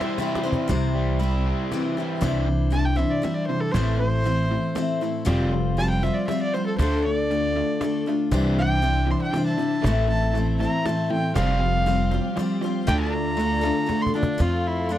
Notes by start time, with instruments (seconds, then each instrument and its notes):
Already playing: overdriven electric guitar E3 G3 C4 E4, steel-string acoustic guitar G3 C4 E4 C5, string section G4 E5 C6, fiddle E5
0.01 cajon slap
0.18 overdriven electric guitar C3 E3 G3 C4 E4, steel-string acoustic guitar G3 C4 E4, cajon slap
0.22 steel-string acoustic guitar C5
0.35 cajon slap
0.43 steel-string acoustic guitar G3 C4 E4 C5
0.52 cajon bass
0.68 upright bass C2, steel-string acoustic guitar C3 E3 G3 C4 E4 C5, overdriven electric guitar C3, cajon bass
0.95 overdriven electric guitar G3
1.19 steel-string acoustic guitar G3 C4 E4 C5, overdriven electric guitar E4
1.46 overdriven electric guitar C4
1.72 overdriven electric guitar E3, steel-string acoustic guitar G3 C4 E4 C5, cajon slap
1.97 overdriven electric guitar G3, steel-string acoustic guitar G3 C4 E4 C5
2.21 upright bass C2, steel-string acoustic guitar C3 E3 G3 D4 E4 C5, overdriven electric guitar C3 E3 G3, cajon bass
2.48 overdriven electric guitar C3 E3
2.71 overdriven electric guitar C3 E3, steel-string acoustic guitar G3 D4 E4 C5, fiddle A5
2.85 fiddle G5
2.96 overdriven electric guitar C3 E3, steel-string acoustic guitar G3 D4 E4 C5, fiddle E5
3.11 fiddle D5
3.22 overdriven electric guitar C3 E3, steel-string acoustic guitar G3 D4 E4 C5, fiddle E5, cajon slap
3.35 fiddle D5
3.47 overdriven electric guitar C3 E3, fiddle C5
3.60 fiddle A4
3.72 upright bass A1, overdriven electric guitar A2, steel-string acoustic guitar A2 E3, fiddle C5, cajon bass
3.76 overdriven electric guitar E3 A3, steel-string acoustic guitar A3 C4 E4 C5
3.99 overdriven electric guitar A2 E3, fiddle C5
4.24 overdriven electric guitar A2 E3, steel-string acoustic guitar A3 C4 E4 C5
4.51 overdriven electric guitar A2 E3
4.75 overdriven electric guitar A2 E3, steel-string acoustic guitar A3 C4 E4 C5, cajon slap
5.01 overdriven electric guitar A2 E3, steel-string acoustic guitar A3 C4 E4 C5
5.25 upright bass F1, steel-string acoustic guitar F3 G3 C4 F4 C5, overdriven electric guitar F3 G3 C4, cajon bass
5.53 overdriven electric guitar F3 G3
5.77 overdriven electric guitar F3 G3, steel-string acoustic guitar G3 C4 F4 C5, fiddle A5
5.90 fiddle G5
6.03 overdriven electric guitar F3 G3, steel-string acoustic guitar C4 F4 C5, fiddle E5
6.14 fiddle D5
6.28 overdriven electric guitar F3 G3, steel-string acoustic guitar G3 C4 F4, fiddle E5, cajon slap
6.32 steel-string acoustic guitar C5
6.42 fiddle D5
6.54 overdriven electric guitar F3 G3, steel-string acoustic guitar C4 F4 C5, fiddle C5
6.66 fiddle A4
6.79 upright bass D2, overdriven electric guitar D3 A3 D4, steel-string acoustic guitar D3 A3 D4 F4 A4, fiddle C5, cajon bass
7.05 overdriven electric guitar D3 A3, fiddle D5
7.30 overdriven electric guitar D3 A3, steel-string acoustic guitar A3 D4 F4
7.35 steel-string acoustic guitar A4
7.56 overdriven electric guitar D3 A3
7.81 overdriven electric guitar D3 A3, steel-string acoustic guitar A3 D4 F4 A4, cajon slap
8.06 overdriven electric guitar D3 A3, steel-string acoustic guitar D4 F4 A4
8.30 upright bass C2, steel-string acoustic guitar C3 E3 G3 D4 E4, overdriven electric guitar C3 E3 G3, string section D4 C5 E5, cajon bass
8.34 steel-string acoustic guitar C5
8.57 overdriven electric guitar C3 E3, fiddle G5
8.82 overdriven electric guitar C3 E3, steel-string acoustic guitar G3 D4 E4 C5
9.07 overdriven electric guitar C3 E3, fiddle C6
9.22 fiddle G5
9.33 overdriven electric guitar C3 E3, steel-string acoustic guitar G3 D4 E4, cajon slap
9.38 steel-string acoustic guitar C5
9.46 fiddle A5
9.58 overdriven electric guitar C3 E3, steel-string acoustic guitar D4 E4 C5
9.62 steel-string acoustic guitar G3
9.82 upright bass A1, overdriven electric guitar A2 E3 A3, steel-string acoustic guitar A2, string section C4 A4, cajon bass
9.86 steel-string acoustic guitar E3 A3 C4 E4 C5
10.09 overdriven electric guitar A2 E3, fiddle A5
10.34 overdriven electric guitar A2 E3, steel-string acoustic guitar A3 C4 E4 C5
10.59 overdriven electric guitar A2 E3, steel-string acoustic guitar E4 C5, fiddle A#5
10.63 steel-string acoustic guitar A3 C4
10.85 overdriven electric guitar A2 E3, steel-string acoustic guitar A3 C4 E4 C5, fiddle A5, cajon slap
11.11 overdriven electric guitar A2 E3, fiddle G5
11.35 upright bass F1, steel-string acoustic guitar F3 G3 C4 F4 C5, overdriven electric guitar F3 G3 C4, string section G4 F5, fiddle F5, cajon bass
11.60 overdriven electric guitar F3 G3
11.86 overdriven electric guitar F3 G3, steel-string acoustic guitar G3 C4 F4 C5
12.11 overdriven electric guitar F3 G3, steel-string acoustic guitar C4 F4 C5
12.36 overdriven electric guitar F3 G3, steel-string acoustic guitar G3 C4 F4, cajon slap
12.40 steel-string acoustic guitar C5
12.62 overdriven electric guitar F3 G3, steel-string acoustic guitar F4 C5
12.66 steel-string acoustic guitar C4
12.87 upright bass D2, overdriven electric guitar D3 A3 D4, steel-string acoustic guitar D3 A3 D4 F4, string section A3 F4 D5, fiddle G5, cajon bass
13.00 fiddle A#5
13.12 overdriven electric guitar D3 A3
13.37 overdriven electric guitar D3 A3, steel-string acoustic guitar A3 D4 F4 A4
13.61 overdriven electric guitar D3 A3, steel-string acoustic guitar D4 F4 A4
13.86 overdriven electric guitar D3 A3, steel-string acoustic guitar A3 D4 F4 A4, cajon bass, cajon slap
14.02 fiddle C6
14.06 cajon bass
14.14 overdriven electric guitar D3 A3, fiddle D4, steel-string acoustic guitar D4 F4 A4
14.23 cajon bass
14.38 upright bass F2, steel-string acoustic guitar F3 A3 C4 F4 A4, fiddle F4, cajon bass
14.42 string section A4 F5 C6
14.66 fiddle E4, cajon slap
14.89 steel-string acoustic guitar A3 C4 F4 A4, fiddle D4